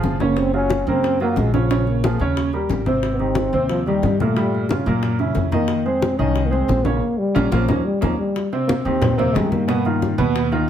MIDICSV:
0, 0, Header, 1, 5, 480
1, 0, Start_track
1, 0, Tempo, 332594
1, 528, Time_signature, 4, 2, 24, 8
1, 15438, End_track
2, 0, Start_track
2, 0, Title_t, "Upright piano"
2, 0, Program_c, 0, 0
2, 0, Note_on_c, 0, 53, 76
2, 0, Note_on_c, 0, 65, 76
2, 0, Note_on_c, 0, 68, 69
2, 207, Note_off_c, 0, 65, 0
2, 208, Note_off_c, 0, 53, 0
2, 212, Note_off_c, 0, 68, 0
2, 295, Note_on_c, 0, 49, 72
2, 304, Note_on_c, 0, 61, 83
2, 306, Note_on_c, 0, 73, 78
2, 687, Note_off_c, 0, 49, 0
2, 692, Note_off_c, 0, 61, 0
2, 693, Note_off_c, 0, 73, 0
2, 777, Note_on_c, 0, 54, 69
2, 779, Note_on_c, 0, 65, 65
2, 789, Note_on_c, 0, 66, 65
2, 1168, Note_off_c, 0, 54, 0
2, 1169, Note_off_c, 0, 65, 0
2, 1175, Note_off_c, 0, 66, 0
2, 1262, Note_on_c, 0, 49, 84
2, 1275, Note_on_c, 0, 58, 77
2, 1279, Note_on_c, 0, 70, 79
2, 1651, Note_off_c, 0, 49, 0
2, 1659, Note_off_c, 0, 58, 0
2, 1662, Note_off_c, 0, 70, 0
2, 1745, Note_on_c, 0, 54, 79
2, 1757, Note_on_c, 0, 66, 70
2, 1759, Note_on_c, 0, 65, 71
2, 2134, Note_off_c, 0, 54, 0
2, 2141, Note_off_c, 0, 66, 0
2, 2142, Note_off_c, 0, 65, 0
2, 2214, Note_on_c, 0, 49, 78
2, 2220, Note_on_c, 0, 61, 71
2, 2229, Note_on_c, 0, 73, 74
2, 2410, Note_off_c, 0, 49, 0
2, 2414, Note_off_c, 0, 61, 0
2, 2419, Note_off_c, 0, 73, 0
2, 2463, Note_on_c, 0, 49, 76
2, 2464, Note_on_c, 0, 61, 68
2, 2464, Note_on_c, 0, 73, 79
2, 2852, Note_off_c, 0, 49, 0
2, 2853, Note_off_c, 0, 61, 0
2, 2853, Note_off_c, 0, 73, 0
2, 2946, Note_on_c, 0, 53, 64
2, 2953, Note_on_c, 0, 65, 63
2, 2957, Note_on_c, 0, 68, 61
2, 3137, Note_off_c, 0, 53, 0
2, 3142, Note_off_c, 0, 65, 0
2, 3144, Note_off_c, 0, 68, 0
2, 3186, Note_on_c, 0, 61, 83
2, 3192, Note_on_c, 0, 49, 82
2, 3194, Note_on_c, 0, 73, 84
2, 3575, Note_off_c, 0, 61, 0
2, 3578, Note_off_c, 0, 49, 0
2, 3579, Note_off_c, 0, 73, 0
2, 3656, Note_on_c, 0, 55, 66
2, 3662, Note_on_c, 0, 70, 67
2, 3666, Note_on_c, 0, 67, 67
2, 4049, Note_off_c, 0, 55, 0
2, 4052, Note_off_c, 0, 70, 0
2, 4054, Note_off_c, 0, 67, 0
2, 4131, Note_on_c, 0, 60, 75
2, 4134, Note_on_c, 0, 48, 73
2, 4145, Note_on_c, 0, 72, 73
2, 4526, Note_off_c, 0, 60, 0
2, 4528, Note_off_c, 0, 48, 0
2, 4534, Note_off_c, 0, 72, 0
2, 4605, Note_on_c, 0, 51, 64
2, 4614, Note_on_c, 0, 63, 68
2, 4614, Note_on_c, 0, 67, 65
2, 5002, Note_off_c, 0, 51, 0
2, 5007, Note_off_c, 0, 67, 0
2, 5008, Note_off_c, 0, 63, 0
2, 5094, Note_on_c, 0, 48, 75
2, 5097, Note_on_c, 0, 60, 83
2, 5098, Note_on_c, 0, 72, 78
2, 5488, Note_off_c, 0, 48, 0
2, 5489, Note_off_c, 0, 60, 0
2, 5490, Note_off_c, 0, 72, 0
2, 5582, Note_on_c, 0, 51, 68
2, 5596, Note_on_c, 0, 63, 68
2, 5598, Note_on_c, 0, 67, 73
2, 5972, Note_off_c, 0, 51, 0
2, 5981, Note_off_c, 0, 63, 0
2, 5982, Note_off_c, 0, 67, 0
2, 6078, Note_on_c, 0, 46, 78
2, 6080, Note_on_c, 0, 58, 76
2, 6083, Note_on_c, 0, 70, 69
2, 6265, Note_off_c, 0, 46, 0
2, 6266, Note_off_c, 0, 58, 0
2, 6268, Note_off_c, 0, 70, 0
2, 6297, Note_on_c, 0, 46, 69
2, 6299, Note_on_c, 0, 55, 81
2, 6304, Note_on_c, 0, 67, 74
2, 6690, Note_off_c, 0, 46, 0
2, 6691, Note_off_c, 0, 55, 0
2, 6694, Note_off_c, 0, 67, 0
2, 6788, Note_on_c, 0, 49, 64
2, 6798, Note_on_c, 0, 61, 65
2, 6800, Note_on_c, 0, 65, 62
2, 6979, Note_off_c, 0, 49, 0
2, 6985, Note_off_c, 0, 61, 0
2, 6987, Note_off_c, 0, 65, 0
2, 7023, Note_on_c, 0, 58, 84
2, 7025, Note_on_c, 0, 46, 79
2, 7036, Note_on_c, 0, 70, 82
2, 7413, Note_off_c, 0, 58, 0
2, 7414, Note_off_c, 0, 46, 0
2, 7421, Note_off_c, 0, 70, 0
2, 7493, Note_on_c, 0, 61, 64
2, 7498, Note_on_c, 0, 49, 71
2, 7501, Note_on_c, 0, 64, 70
2, 7887, Note_off_c, 0, 61, 0
2, 7890, Note_off_c, 0, 49, 0
2, 7892, Note_off_c, 0, 64, 0
2, 7967, Note_on_c, 0, 51, 79
2, 7968, Note_on_c, 0, 63, 75
2, 7972, Note_on_c, 0, 75, 75
2, 8363, Note_off_c, 0, 51, 0
2, 8365, Note_off_c, 0, 63, 0
2, 8367, Note_off_c, 0, 75, 0
2, 8449, Note_on_c, 0, 56, 66
2, 8453, Note_on_c, 0, 68, 70
2, 8460, Note_on_c, 0, 72, 68
2, 8845, Note_off_c, 0, 56, 0
2, 8847, Note_off_c, 0, 68, 0
2, 8851, Note_off_c, 0, 72, 0
2, 8925, Note_on_c, 0, 63, 78
2, 8933, Note_on_c, 0, 51, 81
2, 8937, Note_on_c, 0, 75, 78
2, 9323, Note_off_c, 0, 63, 0
2, 9327, Note_off_c, 0, 51, 0
2, 9330, Note_off_c, 0, 75, 0
2, 9395, Note_on_c, 0, 68, 74
2, 9398, Note_on_c, 0, 56, 70
2, 9408, Note_on_c, 0, 72, 73
2, 9797, Note_off_c, 0, 68, 0
2, 9798, Note_off_c, 0, 56, 0
2, 9805, Note_off_c, 0, 72, 0
2, 9885, Note_on_c, 0, 49, 75
2, 9891, Note_on_c, 0, 61, 68
2, 9897, Note_on_c, 0, 73, 76
2, 10086, Note_off_c, 0, 49, 0
2, 10089, Note_off_c, 0, 61, 0
2, 10093, Note_off_c, 0, 73, 0
2, 10603, Note_on_c, 0, 61, 94
2, 10607, Note_on_c, 0, 58, 86
2, 10607, Note_on_c, 0, 65, 89
2, 10761, Note_off_c, 0, 61, 0
2, 10763, Note_off_c, 0, 58, 0
2, 10764, Note_off_c, 0, 65, 0
2, 10854, Note_on_c, 0, 61, 84
2, 10855, Note_on_c, 0, 58, 98
2, 10855, Note_on_c, 0, 65, 88
2, 11008, Note_off_c, 0, 58, 0
2, 11008, Note_off_c, 0, 61, 0
2, 11008, Note_off_c, 0, 65, 0
2, 11089, Note_on_c, 0, 63, 80
2, 11093, Note_on_c, 0, 58, 75
2, 11095, Note_on_c, 0, 61, 79
2, 11244, Note_off_c, 0, 63, 0
2, 11247, Note_off_c, 0, 58, 0
2, 11248, Note_off_c, 0, 61, 0
2, 11562, Note_on_c, 0, 58, 89
2, 11566, Note_on_c, 0, 61, 78
2, 11569, Note_on_c, 0, 63, 85
2, 11720, Note_off_c, 0, 58, 0
2, 11723, Note_off_c, 0, 61, 0
2, 11724, Note_off_c, 0, 63, 0
2, 12304, Note_on_c, 0, 48, 75
2, 12306, Note_on_c, 0, 60, 87
2, 12312, Note_on_c, 0, 72, 75
2, 12693, Note_off_c, 0, 48, 0
2, 12694, Note_off_c, 0, 60, 0
2, 12697, Note_off_c, 0, 72, 0
2, 12776, Note_on_c, 0, 51, 78
2, 12781, Note_on_c, 0, 63, 85
2, 12784, Note_on_c, 0, 67, 76
2, 13167, Note_off_c, 0, 51, 0
2, 13171, Note_off_c, 0, 63, 0
2, 13172, Note_off_c, 0, 67, 0
2, 13247, Note_on_c, 0, 48, 95
2, 13253, Note_on_c, 0, 60, 96
2, 13255, Note_on_c, 0, 72, 84
2, 13445, Note_off_c, 0, 48, 0
2, 13449, Note_off_c, 0, 60, 0
2, 13450, Note_off_c, 0, 72, 0
2, 13481, Note_on_c, 0, 51, 73
2, 13485, Note_on_c, 0, 63, 65
2, 13486, Note_on_c, 0, 67, 69
2, 13878, Note_off_c, 0, 51, 0
2, 13881, Note_off_c, 0, 63, 0
2, 13881, Note_off_c, 0, 67, 0
2, 13967, Note_on_c, 0, 47, 90
2, 13969, Note_on_c, 0, 59, 86
2, 13972, Note_on_c, 0, 71, 75
2, 14165, Note_off_c, 0, 47, 0
2, 14166, Note_off_c, 0, 59, 0
2, 14168, Note_off_c, 0, 71, 0
2, 14222, Note_on_c, 0, 51, 73
2, 14226, Note_on_c, 0, 63, 73
2, 14230, Note_on_c, 0, 65, 71
2, 14611, Note_off_c, 0, 51, 0
2, 14613, Note_off_c, 0, 63, 0
2, 14615, Note_off_c, 0, 65, 0
2, 14692, Note_on_c, 0, 71, 85
2, 14695, Note_on_c, 0, 47, 97
2, 14697, Note_on_c, 0, 59, 85
2, 15084, Note_off_c, 0, 71, 0
2, 15086, Note_off_c, 0, 47, 0
2, 15087, Note_off_c, 0, 59, 0
2, 15177, Note_on_c, 0, 51, 80
2, 15180, Note_on_c, 0, 63, 88
2, 15187, Note_on_c, 0, 65, 82
2, 15370, Note_off_c, 0, 51, 0
2, 15372, Note_off_c, 0, 63, 0
2, 15376, Note_off_c, 0, 65, 0
2, 15438, End_track
3, 0, Start_track
3, 0, Title_t, "Trombone"
3, 0, Program_c, 1, 57
3, 309, Note_on_c, 1, 58, 84
3, 559, Note_on_c, 1, 60, 104
3, 580, Note_off_c, 1, 58, 0
3, 784, Note_off_c, 1, 60, 0
3, 792, Note_on_c, 1, 61, 112
3, 1269, Note_on_c, 1, 60, 103
3, 1290, Note_off_c, 1, 61, 0
3, 1740, Note_off_c, 1, 60, 0
3, 1762, Note_on_c, 1, 58, 100
3, 2006, Note_on_c, 1, 56, 87
3, 2027, Note_off_c, 1, 58, 0
3, 2225, Note_off_c, 1, 56, 0
3, 2234, Note_on_c, 1, 53, 69
3, 2704, Note_on_c, 1, 58, 83
3, 2726, Note_off_c, 1, 53, 0
3, 3179, Note_off_c, 1, 58, 0
3, 4506, Note_on_c, 1, 59, 66
3, 4609, Note_on_c, 1, 60, 114
3, 4631, Note_off_c, 1, 59, 0
3, 5320, Note_off_c, 1, 60, 0
3, 5329, Note_on_c, 1, 53, 86
3, 5555, Note_off_c, 1, 53, 0
3, 5569, Note_on_c, 1, 55, 88
3, 6049, Note_on_c, 1, 57, 73
3, 6071, Note_off_c, 1, 55, 0
3, 6772, Note_off_c, 1, 57, 0
3, 7982, Note_on_c, 1, 58, 89
3, 8455, Note_on_c, 1, 60, 98
3, 8476, Note_off_c, 1, 58, 0
3, 8909, Note_on_c, 1, 61, 96
3, 8931, Note_off_c, 1, 60, 0
3, 9317, Note_on_c, 1, 58, 75
3, 9338, Note_off_c, 1, 61, 0
3, 9390, Note_on_c, 1, 60, 98
3, 9411, Note_off_c, 1, 58, 0
3, 9870, Note_on_c, 1, 58, 83
3, 9892, Note_off_c, 1, 60, 0
3, 10365, Note_on_c, 1, 55, 94
3, 10386, Note_off_c, 1, 58, 0
3, 10854, Note_on_c, 1, 53, 81
3, 10876, Note_off_c, 1, 55, 0
3, 11327, Note_on_c, 1, 55, 80
3, 11349, Note_off_c, 1, 53, 0
3, 11580, Note_on_c, 1, 53, 70
3, 11602, Note_off_c, 1, 55, 0
3, 11799, Note_off_c, 1, 53, 0
3, 11808, Note_on_c, 1, 55, 71
3, 12257, Note_off_c, 1, 55, 0
3, 12516, Note_on_c, 1, 58, 89
3, 12627, Note_off_c, 1, 58, 0
3, 12744, Note_on_c, 1, 60, 99
3, 13233, Note_on_c, 1, 58, 101
3, 13255, Note_off_c, 1, 60, 0
3, 13466, Note_on_c, 1, 56, 95
3, 13488, Note_off_c, 1, 58, 0
3, 13719, Note_on_c, 1, 58, 81
3, 13741, Note_off_c, 1, 56, 0
3, 14684, Note_off_c, 1, 58, 0
3, 15438, End_track
4, 0, Start_track
4, 0, Title_t, "Upright bass"
4, 0, Program_c, 2, 32
4, 50, Note_on_c, 2, 30, 83
4, 1169, Note_off_c, 2, 30, 0
4, 1252, Note_on_c, 2, 42, 97
4, 1922, Note_off_c, 2, 42, 0
4, 1969, Note_on_c, 2, 34, 95
4, 3090, Note_off_c, 2, 34, 0
4, 3166, Note_on_c, 2, 39, 93
4, 3839, Note_off_c, 2, 39, 0
4, 3883, Note_on_c, 2, 32, 84
4, 5007, Note_off_c, 2, 32, 0
4, 5090, Note_on_c, 2, 39, 94
4, 5762, Note_off_c, 2, 39, 0
4, 5808, Note_on_c, 2, 43, 85
4, 6930, Note_off_c, 2, 43, 0
4, 7015, Note_on_c, 2, 42, 98
4, 7684, Note_off_c, 2, 42, 0
4, 7727, Note_on_c, 2, 41, 81
4, 8849, Note_off_c, 2, 41, 0
4, 8932, Note_on_c, 2, 36, 91
4, 9603, Note_off_c, 2, 36, 0
4, 9643, Note_on_c, 2, 34, 90
4, 10095, Note_off_c, 2, 34, 0
4, 10609, Note_on_c, 2, 34, 75
4, 10790, Note_off_c, 2, 34, 0
4, 10846, Note_on_c, 2, 34, 105
4, 11028, Note_off_c, 2, 34, 0
4, 11090, Note_on_c, 2, 39, 91
4, 11271, Note_off_c, 2, 39, 0
4, 11576, Note_on_c, 2, 39, 89
4, 11753, Note_off_c, 2, 39, 0
4, 12773, Note_on_c, 2, 39, 97
4, 13441, Note_off_c, 2, 39, 0
4, 13494, Note_on_c, 2, 43, 93
4, 14610, Note_off_c, 2, 43, 0
4, 14692, Note_on_c, 2, 39, 110
4, 15360, Note_off_c, 2, 39, 0
4, 15438, End_track
5, 0, Start_track
5, 0, Title_t, "Drums"
5, 48, Note_on_c, 9, 63, 71
5, 52, Note_on_c, 9, 60, 35
5, 52, Note_on_c, 9, 61, 78
5, 192, Note_off_c, 9, 63, 0
5, 197, Note_off_c, 9, 60, 0
5, 197, Note_off_c, 9, 61, 0
5, 285, Note_on_c, 9, 60, 30
5, 292, Note_on_c, 9, 63, 84
5, 430, Note_off_c, 9, 60, 0
5, 437, Note_off_c, 9, 63, 0
5, 528, Note_on_c, 9, 60, 60
5, 528, Note_on_c, 9, 63, 31
5, 672, Note_off_c, 9, 63, 0
5, 673, Note_off_c, 9, 60, 0
5, 772, Note_on_c, 9, 63, 29
5, 917, Note_off_c, 9, 63, 0
5, 1005, Note_on_c, 9, 60, 59
5, 1016, Note_on_c, 9, 63, 79
5, 1149, Note_off_c, 9, 60, 0
5, 1160, Note_off_c, 9, 63, 0
5, 1252, Note_on_c, 9, 60, 30
5, 1258, Note_on_c, 9, 63, 32
5, 1396, Note_off_c, 9, 60, 0
5, 1402, Note_off_c, 9, 63, 0
5, 1490, Note_on_c, 9, 63, 30
5, 1503, Note_on_c, 9, 60, 64
5, 1634, Note_off_c, 9, 63, 0
5, 1647, Note_off_c, 9, 60, 0
5, 1727, Note_on_c, 9, 63, 30
5, 1736, Note_on_c, 9, 60, 38
5, 1871, Note_off_c, 9, 63, 0
5, 1880, Note_off_c, 9, 60, 0
5, 1965, Note_on_c, 9, 63, 71
5, 1980, Note_on_c, 9, 60, 31
5, 1980, Note_on_c, 9, 61, 79
5, 2109, Note_off_c, 9, 63, 0
5, 2124, Note_off_c, 9, 60, 0
5, 2124, Note_off_c, 9, 61, 0
5, 2220, Note_on_c, 9, 63, 79
5, 2221, Note_on_c, 9, 60, 33
5, 2365, Note_off_c, 9, 63, 0
5, 2366, Note_off_c, 9, 60, 0
5, 2452, Note_on_c, 9, 63, 33
5, 2465, Note_on_c, 9, 60, 70
5, 2596, Note_off_c, 9, 63, 0
5, 2609, Note_off_c, 9, 60, 0
5, 2700, Note_on_c, 9, 63, 33
5, 2844, Note_off_c, 9, 63, 0
5, 2942, Note_on_c, 9, 63, 84
5, 2943, Note_on_c, 9, 60, 58
5, 3087, Note_off_c, 9, 60, 0
5, 3087, Note_off_c, 9, 63, 0
5, 3174, Note_on_c, 9, 63, 32
5, 3178, Note_on_c, 9, 60, 30
5, 3319, Note_off_c, 9, 63, 0
5, 3322, Note_off_c, 9, 60, 0
5, 3410, Note_on_c, 9, 63, 32
5, 3422, Note_on_c, 9, 60, 70
5, 3554, Note_off_c, 9, 63, 0
5, 3567, Note_off_c, 9, 60, 0
5, 3649, Note_on_c, 9, 63, 33
5, 3659, Note_on_c, 9, 60, 36
5, 3793, Note_off_c, 9, 63, 0
5, 3803, Note_off_c, 9, 60, 0
5, 3890, Note_on_c, 9, 63, 77
5, 3903, Note_on_c, 9, 60, 33
5, 3903, Note_on_c, 9, 61, 86
5, 4034, Note_off_c, 9, 63, 0
5, 4047, Note_off_c, 9, 60, 0
5, 4047, Note_off_c, 9, 61, 0
5, 4130, Note_on_c, 9, 63, 78
5, 4144, Note_on_c, 9, 60, 34
5, 4275, Note_off_c, 9, 63, 0
5, 4288, Note_off_c, 9, 60, 0
5, 4370, Note_on_c, 9, 63, 33
5, 4372, Note_on_c, 9, 60, 62
5, 4514, Note_off_c, 9, 63, 0
5, 4516, Note_off_c, 9, 60, 0
5, 4609, Note_on_c, 9, 63, 32
5, 4754, Note_off_c, 9, 63, 0
5, 4837, Note_on_c, 9, 63, 78
5, 4854, Note_on_c, 9, 60, 53
5, 4982, Note_off_c, 9, 63, 0
5, 4999, Note_off_c, 9, 60, 0
5, 5095, Note_on_c, 9, 63, 30
5, 5106, Note_on_c, 9, 60, 31
5, 5239, Note_off_c, 9, 63, 0
5, 5250, Note_off_c, 9, 60, 0
5, 5332, Note_on_c, 9, 60, 61
5, 5335, Note_on_c, 9, 63, 31
5, 5477, Note_off_c, 9, 60, 0
5, 5479, Note_off_c, 9, 63, 0
5, 5575, Note_on_c, 9, 63, 32
5, 5590, Note_on_c, 9, 60, 35
5, 5719, Note_off_c, 9, 63, 0
5, 5734, Note_off_c, 9, 60, 0
5, 5819, Note_on_c, 9, 60, 33
5, 5819, Note_on_c, 9, 61, 86
5, 5819, Note_on_c, 9, 63, 71
5, 5963, Note_off_c, 9, 60, 0
5, 5963, Note_off_c, 9, 61, 0
5, 5963, Note_off_c, 9, 63, 0
5, 6065, Note_on_c, 9, 63, 78
5, 6068, Note_on_c, 9, 60, 33
5, 6210, Note_off_c, 9, 63, 0
5, 6213, Note_off_c, 9, 60, 0
5, 6300, Note_on_c, 9, 60, 62
5, 6316, Note_on_c, 9, 63, 34
5, 6444, Note_off_c, 9, 60, 0
5, 6460, Note_off_c, 9, 63, 0
5, 6561, Note_on_c, 9, 63, 30
5, 6705, Note_off_c, 9, 63, 0
5, 6772, Note_on_c, 9, 60, 54
5, 6791, Note_on_c, 9, 63, 76
5, 6916, Note_off_c, 9, 60, 0
5, 6936, Note_off_c, 9, 63, 0
5, 7026, Note_on_c, 9, 60, 34
5, 7036, Note_on_c, 9, 63, 33
5, 7170, Note_off_c, 9, 60, 0
5, 7180, Note_off_c, 9, 63, 0
5, 7255, Note_on_c, 9, 60, 64
5, 7262, Note_on_c, 9, 63, 33
5, 7400, Note_off_c, 9, 60, 0
5, 7407, Note_off_c, 9, 63, 0
5, 7489, Note_on_c, 9, 60, 36
5, 7496, Note_on_c, 9, 63, 31
5, 7634, Note_off_c, 9, 60, 0
5, 7640, Note_off_c, 9, 63, 0
5, 7718, Note_on_c, 9, 60, 33
5, 7718, Note_on_c, 9, 61, 78
5, 7726, Note_on_c, 9, 63, 76
5, 7862, Note_off_c, 9, 60, 0
5, 7862, Note_off_c, 9, 61, 0
5, 7871, Note_off_c, 9, 63, 0
5, 7962, Note_on_c, 9, 60, 33
5, 7971, Note_on_c, 9, 63, 81
5, 8106, Note_off_c, 9, 60, 0
5, 8115, Note_off_c, 9, 63, 0
5, 8196, Note_on_c, 9, 60, 68
5, 8221, Note_on_c, 9, 63, 31
5, 8341, Note_off_c, 9, 60, 0
5, 8365, Note_off_c, 9, 63, 0
5, 8456, Note_on_c, 9, 63, 31
5, 8601, Note_off_c, 9, 63, 0
5, 8693, Note_on_c, 9, 63, 80
5, 8694, Note_on_c, 9, 60, 63
5, 8838, Note_off_c, 9, 60, 0
5, 8838, Note_off_c, 9, 63, 0
5, 8933, Note_on_c, 9, 63, 31
5, 8939, Note_on_c, 9, 60, 32
5, 9077, Note_off_c, 9, 63, 0
5, 9083, Note_off_c, 9, 60, 0
5, 9170, Note_on_c, 9, 63, 32
5, 9173, Note_on_c, 9, 60, 64
5, 9315, Note_off_c, 9, 63, 0
5, 9317, Note_off_c, 9, 60, 0
5, 9417, Note_on_c, 9, 63, 33
5, 9419, Note_on_c, 9, 60, 35
5, 9561, Note_off_c, 9, 63, 0
5, 9563, Note_off_c, 9, 60, 0
5, 9653, Note_on_c, 9, 63, 75
5, 9660, Note_on_c, 9, 60, 33
5, 9660, Note_on_c, 9, 61, 81
5, 9797, Note_off_c, 9, 63, 0
5, 9804, Note_off_c, 9, 60, 0
5, 9804, Note_off_c, 9, 61, 0
5, 9882, Note_on_c, 9, 63, 80
5, 9908, Note_on_c, 9, 60, 31
5, 10027, Note_off_c, 9, 63, 0
5, 10052, Note_off_c, 9, 60, 0
5, 10618, Note_on_c, 9, 63, 85
5, 10624, Note_on_c, 9, 61, 99
5, 10763, Note_off_c, 9, 63, 0
5, 10768, Note_off_c, 9, 61, 0
5, 10853, Note_on_c, 9, 61, 86
5, 10856, Note_on_c, 9, 63, 103
5, 10997, Note_off_c, 9, 61, 0
5, 11000, Note_off_c, 9, 63, 0
5, 11091, Note_on_c, 9, 61, 90
5, 11093, Note_on_c, 9, 63, 94
5, 11235, Note_off_c, 9, 61, 0
5, 11237, Note_off_c, 9, 63, 0
5, 11575, Note_on_c, 9, 61, 100
5, 11583, Note_on_c, 9, 63, 92
5, 11719, Note_off_c, 9, 61, 0
5, 11728, Note_off_c, 9, 63, 0
5, 12066, Note_on_c, 9, 60, 65
5, 12069, Note_on_c, 9, 63, 34
5, 12211, Note_off_c, 9, 60, 0
5, 12214, Note_off_c, 9, 63, 0
5, 12302, Note_on_c, 9, 63, 34
5, 12309, Note_on_c, 9, 60, 35
5, 12446, Note_off_c, 9, 63, 0
5, 12454, Note_off_c, 9, 60, 0
5, 12544, Note_on_c, 9, 63, 84
5, 12546, Note_on_c, 9, 60, 59
5, 12688, Note_off_c, 9, 63, 0
5, 12691, Note_off_c, 9, 60, 0
5, 12784, Note_on_c, 9, 63, 35
5, 12785, Note_on_c, 9, 60, 35
5, 12928, Note_off_c, 9, 63, 0
5, 12929, Note_off_c, 9, 60, 0
5, 13012, Note_on_c, 9, 63, 37
5, 13012, Note_on_c, 9, 64, 92
5, 13024, Note_on_c, 9, 60, 75
5, 13156, Note_off_c, 9, 63, 0
5, 13156, Note_off_c, 9, 64, 0
5, 13168, Note_off_c, 9, 60, 0
5, 13265, Note_on_c, 9, 63, 35
5, 13265, Note_on_c, 9, 64, 66
5, 13410, Note_off_c, 9, 63, 0
5, 13410, Note_off_c, 9, 64, 0
5, 13508, Note_on_c, 9, 63, 89
5, 13510, Note_on_c, 9, 60, 72
5, 13510, Note_on_c, 9, 61, 81
5, 13653, Note_off_c, 9, 63, 0
5, 13654, Note_off_c, 9, 60, 0
5, 13654, Note_off_c, 9, 61, 0
5, 13737, Note_on_c, 9, 63, 82
5, 13747, Note_on_c, 9, 60, 34
5, 13881, Note_off_c, 9, 63, 0
5, 13892, Note_off_c, 9, 60, 0
5, 13979, Note_on_c, 9, 60, 71
5, 13985, Note_on_c, 9, 63, 34
5, 14123, Note_off_c, 9, 60, 0
5, 14129, Note_off_c, 9, 63, 0
5, 14217, Note_on_c, 9, 60, 34
5, 14229, Note_on_c, 9, 63, 34
5, 14361, Note_off_c, 9, 60, 0
5, 14373, Note_off_c, 9, 63, 0
5, 14464, Note_on_c, 9, 63, 54
5, 14467, Note_on_c, 9, 60, 62
5, 14609, Note_off_c, 9, 63, 0
5, 14612, Note_off_c, 9, 60, 0
5, 14701, Note_on_c, 9, 60, 35
5, 14708, Note_on_c, 9, 63, 36
5, 14846, Note_off_c, 9, 60, 0
5, 14853, Note_off_c, 9, 63, 0
5, 14947, Note_on_c, 9, 60, 74
5, 14947, Note_on_c, 9, 63, 38
5, 15091, Note_off_c, 9, 60, 0
5, 15091, Note_off_c, 9, 63, 0
5, 15181, Note_on_c, 9, 63, 31
5, 15191, Note_on_c, 9, 60, 39
5, 15325, Note_off_c, 9, 63, 0
5, 15335, Note_off_c, 9, 60, 0
5, 15438, End_track
0, 0, End_of_file